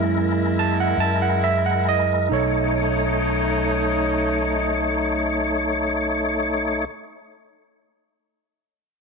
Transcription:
0.00 0.94 F#2 loud
0.00 0.94 G#3 medium
0.00 2.14 G#3 medium
0.00 2.29 G#3 medium
0.00 0.95 A#3 soft
0.00 2.14 A#3 medium
0.00 0.95 E4 medium
0.00 2.14 E4 medium
0.00 2.29 E4 medium
0.00 2.28 A#4 medium
0.59 0.77 A5 medium
0.80 0.98 F#5 medium
0.97 2.27 F#2 loud
0.97 1.19 A5 medium
1.22 1.41 F#5 medium
1.44 1.63 E5 medium
1.66 1.85 F#5 medium
1.89 2.31 D#5 medium
2.29 6.84 B1 loud
2.29 6.84 A3 medium
2.29 6.85 A3 medium
2.29 6.84 C#4 medium
2.29 6.82 D#4 medium
2.29 6.84 D#4 medium
2.29 6.85 A4 medium
2.29 6.85 C#5 medium
2.33 6.86 C#5 medium

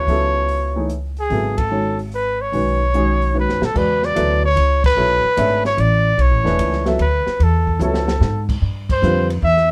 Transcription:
0.00 0.87 C#5 loud
0.07 1.26 C#2 medium
0.07 0.71 C#3 medium
0.07 0.71 F#3 medium
0.07 0.72 B3 medium
0.07 0.72 E4 medium
0.07 0.72 A4 medium
0.07 open hi-hat soft
0.48 open hi-hat soft
0.76 0.88 E3 medium
0.76 0.89 A3 medium
0.76 0.89 D#4 medium
0.76 0.89 G#4 medium
0.76 0.89 C#5 medium
0.90 closed hi-hat medium
1.17 1.59 G#4 medium
1.17 open hi-hat soft
1.30 2.49 G#1 medium
1.30 1.56 C#3 soft
1.30 1.56 F#3 soft
1.30 1.56 B3 soft
1.30 1.56 E4 soft
1.30 1.57 A4 medium
1.30 open hi-hat soft
1.58 1.99 A4 medium
1.58 kick medium
1.58 ride medium
1.71 1.96 D#3 medium
1.71 1.96 G#3 soft
1.71 1.96 C#4 soft
1.71 1.97 F#4 soft
1.71 1.97 C#5 medium
1.99 open hi-hat soft
2.12 2.43 B4 medium
2.12 open hi-hat soft
2.42 3.36 C#5 medium
2.52 3.44 B1 medium
2.52 2.78 D#3 medium
2.52 2.78 G#3 medium
2.52 2.78 C#4 soft
2.52 2.78 F#4 soft
2.52 2.79 B4 medium
2.52 open hi-hat soft
2.94 3.32 D#3 medium
2.94 3.33 G#3 medium
2.94 3.33 C#4 medium
2.94 3.34 F#4 medium
2.94 3.34 G#4 medium
2.94 closed hi-hat medium
3.22 open hi-hat soft
3.34 3.59 D#3 medium
3.34 3.59 G#3 soft
3.34 3.60 C#4 soft
3.34 3.60 F#4 soft
3.34 3.60 B4 medium
3.39 3.66 B4 medium
3.49 3.61 F#2 medium
3.49 snare soft
3.61 3.74 B2 medium
3.61 3.79 A4 medium
3.61 snare medium
3.74 4.15 E2 medium
3.74 4.15 C#3 soft
3.74 4.14 G#3 medium
3.74 4.15 F#4 medium
3.74 4.15 B4 medium
3.74 4.07 B4 medium
3.74 4.15 D5 medium
3.74 kick medium
3.74 crash medium
4.03 4.45 D5 loud
4.03 snare soft
4.15 4.55 D2 medium
4.15 4.40 F#3 medium
4.15 4.40 B3 medium
4.15 4.40 E4 medium
4.15 4.41 A4 medium
4.15 4.41 B4 medium
4.15 hi-hat pedal medium
4.15 ride medium
4.45 4.82 C#5 loud
4.56 4.96 C#2 medium
4.56 ride medium
4.84 5.62 B4 loud
4.84 kick medium
4.84 crash medium
4.96 5.23 B1 medium
4.96 5.21 F#3 medium
4.96 5.21 B3 medium
4.96 5.22 E4 medium
4.96 5.22 A4 medium
4.96 5.22 C#5 medium
5.24 muted upright bass stroke soft
5.37 5.77 G#1 medium
5.37 5.62 A3 medium
5.37 5.62 D4 medium
5.37 5.62 G#4 medium
5.37 5.62 C#5 medium
5.37 5.63 E5 medium
5.37 hi-hat pedal medium
5.37 ride medium
5.65 5.82 C#5 medium
5.65 snare soft
5.77 6.17 A1 medium
5.77 6.22 D5 medium
5.77 hi-hat pedal soft
5.77 ride medium
6.18 6.31 B1 medium
6.18 6.88 C#5 medium
6.18 ride medium
6.31 6.44 A1 medium
6.44 6.58 E1 medium
6.44 6.83 E3 medium
6.44 6.83 A3 medium
6.44 6.83 D4 medium
6.44 6.84 G#4 medium
6.44 6.84 B4 medium
6.44 snare soft
6.59 6.98 C#2 medium
6.59 hi-hat pedal medium
6.59 ride medium
6.73 snare soft
6.86 6.98 F#3 medium
6.86 6.98 B3 medium
6.86 6.99 E4 medium
6.86 6.99 A4 medium
6.86 6.99 E5 medium
6.86 snare soft
6.86 ride soft
6.99 7.25 D2 medium
6.99 7.45 B4 medium
6.99 ride medium
7.27 muted upright bass stroke soft
7.27 snare soft
7.39 7.79 E2 medium
7.39 7.82 A4 medium
7.39 ride medium
7.67 kick medium
7.79 8.20 C#2 medium
7.79 8.05 F#3 medium
7.79 8.05 B3 medium
7.79 8.06 E4 medium
7.79 8.06 A4 medium
7.79 8.46 A4 medium
7.79 8.06 C#5 medium
7.79 hi-hat pedal medium
7.94 snare medium
8.08 snare medium
8.20 8.60 G#2 medium
8.20 snare medium
8.49 kick medium
8.49 crash medium
8.62 9.01 G2 medium
8.89 9.28 C5 loud
8.89 kick medium
8.89 crash medium
9.02 9.42 F2 medium
9.02 9.27 D3 medium
9.02 9.27 G3 medium
9.02 9.28 C4 medium
9.02 9.28 F4 medium
9.02 9.28 B4 medium
9.02 hi-hat pedal medium
9.30 ride medium
9.42 9.72 E2 medium
9.42 9.69 E5 medium
9.57 snare soft

